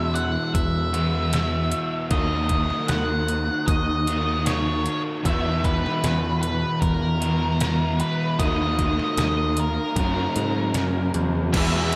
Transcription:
Already playing: E2 B2 E3 B3 E4 F#4 E5
0.15 F#5, closed hi-hat
0.54 E2 E5, kick, closed hi-hat
0.93 E2 B2 E3 B3 E4 F#4, closed hi-hat
1.33 E2 B2 E3 B3 E4 F#4, snare, closed hi-hat
1.72 closed hi-hat
2.10 D#2 D#3 A#3 D#4 F#4 D#5, kick, closed hi-hat
2.49 kick, closed hi-hat
2.70 snare
2.88 D#2 F#5, snare, closed hi-hat
3.28 closed hi-hat
3.67 D#2 D#5, kick, closed hi-hat
4.07 D#3 A#3 D#4 F#4, closed hi-hat
4.46 D#3 A#3 D#4 F#4 C#5, snare, closed hi-hat
4.86 closed hi-hat
5.24 E2 B2 E3 B3 E4 F#4 E5, kick, closed hi-hat
5.64 B4, kick, closed hi-hat
5.86 snare
6.04 E2, snare, closed hi-hat
6.42 B4, closed hi-hat
6.81 E2 A#4, kick, closed hi-hat
7.20 E2 B2 E3 B3 E4 F#4, closed hi-hat
7.59 E2 B2 E3 B3 E4 F#4, snare, closed hi-hat
8.00 B4, closed hi-hat
8.38 D#2 D#3 A#3 D#4 F#4 D#5, kick, closed hi-hat
8.79 kick, closed hi-hat
8.99 snare
9.17 D#2 D#5, snare, closed hi-hat
9.57 A#4, closed hi-hat
9.96 F#2 C#3 F#3 A#3 C#4 F#4, kick, closed hi-hat
10.36 G#2, closed hi-hat
10.74 F#2, snare, closed hi-hat
11.14 E2, closed hi-hat
11.54 E2 B2 E3 G#3 B3 E4 G#4 E5, kick, crash, ride
11.92 G#4, ride

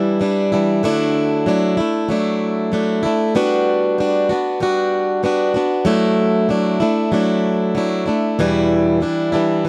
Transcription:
Already playing: E3 G3 D4 E4
0.20 E3 G3 D4 E4
0.52 E3 G3 D4 E4
0.83 D3 F#3 A3 D4 E4
1.46 F#3 A3 D4 E4
1.77 A3 D4 E4
2.09 F#3 A3 D4 E4
2.72 F#3 A3 D4 E4
3.03 A3 D4 E4
3.35 G3 B3 D4 F#4
3.98 G3 B3 D4 F#4
4.29 B3 D4 F#4
4.60 G3 B3 D4 F#4
5.23 G3 B3 D4 F#4
5.54 B3 D4 F#4
5.85 F#3 A3 D4 E4
6.49 F#3 A3 D4 E4
6.80 A3 D4 E4
7.12 F#3 A3 D4 E4
7.75 F#3 A3 D4 E4
8.06 A3 D4 E4
8.39 E2 B2 E3 G3 D4 E4
9.00 E3 G3 D4 E4
9.32 E3 G3 D4 E4
9.65 E3

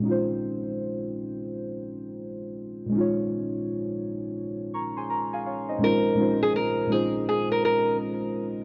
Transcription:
Already playing: A#2
0.00 G#3 C#4
0.05 D#4 F4
0.11 C5
2.86 A#2 G#3
2.92 C#4 D#4
2.97 F4 C#5
4.74 A#5 C#6
4.97 G#5 C6
5.10 A#5
5.33 F5 G#5
5.46 C#5 F5
5.69 C5 D#5
5.78 A#2 G#3 C#4
5.83 D#4 F4 A#4 C5
6.15 A#2 G#3 C#4
6.19 D#4 F4 C5
6.43 G#4
6.56 A#4
6.87 A#2 G#3 C#4
6.91 D#4 F4 G#4 C5
7.29 G#4
7.52 A#4
7.65 A#4

